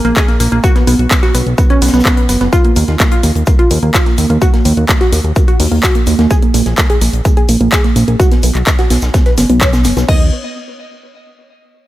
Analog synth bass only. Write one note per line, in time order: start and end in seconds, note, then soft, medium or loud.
0.05 0.13 A#1 medium
0.40 0.48 A#1 loud
0.52 0.60 A#1 medium
0.87 0.95 B1 medium
0.99 1.07 B1 medium
1.35 1.43 B1 loud
1.46 1.54 B1 medium
1.82 1.90 B1 medium
1.94 2.02 B1 medium
2.29 2.37 F#1 medium
2.41 2.49 F#1 medium
2.76 2.84 D#2 medium
2.88 2.96 D#2 medium
3.24 3.32 D#2 loud
3.36 3.43 D#2 medium
3.71 3.79 D#2 loud
3.83 3.91 D#2 medium
4.18 4.26 D#2 medium
4.30 4.38 D#2 medium
4.65 4.73 D#2 loud
4.77 4.85 D#2 medium
5.12 5.21 D#2 medium
5.24 5.32 D#2 medium
5.60 5.68 D#2 loud
5.72 5.80 D#2 medium
6.07 6.15 D#2 medium
6.19 6.27 D#2 medium
6.54 6.62 A#1 loud
6.66 6.74 A#1 medium
7.01 7.10 A#1 loud
7.13 7.21 A#1 medium
7.49 7.57 A#1 medium
7.61 7.69 A#1 medium
7.96 8.04 A#1 loud
8.08 8.16 A#1 medium
8.43 8.51 B1 medium
8.55 8.63 B1 medium
8.91 8.99 B1 medium
9.02 9.10 B1 medium
9.38 9.46 F#1 medium
9.50 9.86 B1 medium
9.85 9.93 F#1 medium
9.97 10.05 B1 medium
10.09 10.31 D#2 loud